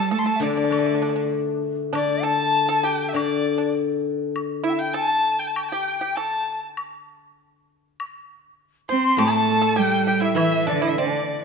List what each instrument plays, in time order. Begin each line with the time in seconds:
Already playing: guzheng G3, cello G3, pipa A4, erhu A5
0.00 dizi A5
0.11 cello A3, pipa A4, dizi A5, erhu A5
0.19 erhu C6
0.26 pipa A4, erhu A5
0.36 dizi E5
0.40 guzheng D3, cello D3, pipa D4, dizi D5, erhu D5
0.50 pipa D4
0.57 pipa D4
0.64 pipa D4
0.71 guzheng A3, pipa D4, high woodblock
0.79 pipa D4
0.86 pipa D4
0.95 pipa D4
1.02 pipa D4, guzheng D4
1.09 pipa D4
1.16 pipa D4
1.93 guzheng D3, pipa D4, erhu D5, dizi D5, high woodblock
2.23 pipa A4, erhu A5, dizi A5
2.69 pipa A4
2.83 pipa G4, erhu G5
3.09 dizi E5, erhu E5
3.13 guzheng D3, pipa D4, erhu D5, dizi D5, high woodblock
3.58 pipa D4
4.36 high woodblock
4.64 pipa E4, erhu E5, dizi E5
4.70 dizi E5 G5
4.79 erhu G5, dizi G5
4.94 pipa A4, erhu A5, dizi A5
5.39 erhu G5
5.47 erhu A5
5.56 erhu G5, high woodblock
5.63 erhu A5
5.69 pipa G4, erhu G5, dizi G5
5.99 pipa G4, erhu G5
6.16 pipa A4, erhu A5, dizi A5, high woodblock, low woodblock
6.77 high woodblock
8.00 high woodblock
8.89 cello C4, pipa C5, dizi C6, erhu C6
9.17 guzheng A2, cello A3, pipa A4, erhu A5, dizi A5, high woodblock
9.62 pipa A4
9.76 cello G3, pipa G4, dizi G5, erhu G5
10.07 pipa G4, dizi G5, erhu G5
10.21 pipa E4, dizi E5, erhu E5
10.35 guzheng E3, cello E3, pipa E4, erhu E5, dizi E5, high woodblock
10.67 cello D3, pipa D4, erhu D5, dizi D5
10.82 pipa E4, dizi E5, erhu E5
10.98 cello D3, pipa D4, erhu D5, dizi D5